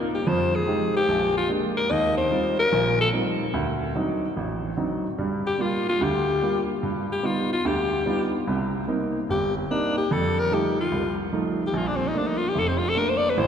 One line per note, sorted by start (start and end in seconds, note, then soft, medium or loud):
0.00 0.14 A#3 soft
0.00 0.14 C4 soft
0.00 0.14 D4 soft
0.00 0.14 D#4 soft
0.00 0.14 F4 medium
0.14 0.30 G4 medium
0.27 0.62 F2 medium
0.27 0.62 F3 medium
0.27 0.57 C5 medium
0.55 0.95 G#4 medium
0.67 0.96 G#3 medium
0.67 0.96 D#4 soft
0.67 0.96 F4 medium
0.67 0.96 G4 medium
0.96 1.34 G4 loud
1.09 1.44 A#1 medium
1.37 1.49 F4 medium
1.49 1.78 G#3 medium
1.49 1.78 A#3 soft
1.49 1.78 D4 medium
1.77 1.93 A#4 medium
1.90 2.26 D#2 medium
1.90 2.17 D#5 medium
2.17 2.56 C5 medium
2.31 2.60 G3 medium
2.31 2.60 C4 soft
2.31 2.60 D#4 soft
2.31 2.60 F4 medium
2.59 2.97 A#4 loud
2.72 3.08 A#1 medium
2.72 3.08 A#2 medium
3.01 3.08 A4 medium
3.13 3.42 G3 soft
3.13 3.42 C4 soft
3.13 3.42 D#4 soft
3.13 3.42 F4 medium
3.54 3.90 D2 medium
3.95 4.24 F#3 medium
3.95 4.24 C4 soft
3.95 4.24 D4 soft
3.95 4.24 D#4 medium
4.37 4.72 A1 medium
4.77 5.06 F#3 soft
4.77 5.06 C4 soft
4.77 5.06 D4 soft
4.77 5.06 D#4 medium
5.18 5.54 G2 medium
5.18 5.54 G3 medium
5.47 5.63 G4 medium
5.59 5.88 G3 medium
5.59 5.88 A#3 soft
5.59 5.88 F4 medium
5.89 6.05 F4 medium
6.01 6.36 D2 medium
6.01 6.36 D3 medium
6.01 6.70 G4 medium
6.42 6.70 G3 soft
6.42 6.70 A#3 soft
6.42 6.71 F4 medium
6.83 7.18 G2 medium
7.12 7.27 G4 medium
7.23 7.52 G3 soft
7.23 7.52 B3 soft
7.23 7.52 D#4 soft
7.23 7.52 F4 medium
7.53 7.68 F4 medium
7.65 8.00 D2 medium
7.65 8.00 D3 medium
7.65 8.34 G4 medium
8.06 8.34 G3 soft
8.06 8.34 B3 medium
8.06 8.35 D#4 soft
8.06 8.35 F4 medium
8.47 8.82 C2 medium
8.47 8.82 C3 medium
8.87 9.16 A#3 soft
8.87 9.16 C4 soft
8.87 9.16 D#4 medium
9.29 9.64 G1 medium
9.29 9.55 G4 medium
9.57 9.72 A#3 soft
9.71 9.98 A#3 medium
9.71 9.99 C4 soft
9.71 9.97 D4 medium
9.71 9.99 D#4 medium
9.97 10.14 G4 medium
10.11 10.46 F2 medium
10.11 10.41 A4 medium
10.39 10.55 A#4 loud
10.51 10.80 F3 soft
10.51 10.80 G3 soft
10.51 10.80 A3 soft
10.51 10.80 D#4 medium
10.51 10.80 G4 medium
10.80 11.17 F4 medium
10.92 11.27 C2 medium
11.32 11.61 F3 medium
11.32 11.61 G3 soft
11.32 11.61 A3 soft
11.32 11.62 D#4 medium
11.66 11.79 G4 medium
11.73 12.09 A#1 medium
11.73 11.89 F4 medium
11.88 11.97 D4 medium
11.96 12.09 C4 medium
12.08 12.20 D#4 medium
12.14 12.43 A3 soft
12.14 12.43 A#3 soft
12.14 12.43 D4 medium
12.14 12.29 D4 medium
12.28 12.39 D#4 medium
12.37 12.50 F4 medium
12.49 12.60 G4 medium
12.55 12.91 F1 medium
12.55 12.70 A4 medium
12.68 12.79 C4 medium
12.78 12.90 F4 medium
12.89 12.99 A4 medium
12.95 13.24 A3 medium
12.95 13.25 A#3 medium
12.95 13.25 D4 medium
12.95 13.11 A#4 medium
13.09 13.19 C5 medium
13.17 13.31 D5 loud
13.30 13.41 B4 medium
13.37 13.47 A1 medium
13.37 13.47 A2 medium
13.37 13.47 C5 loud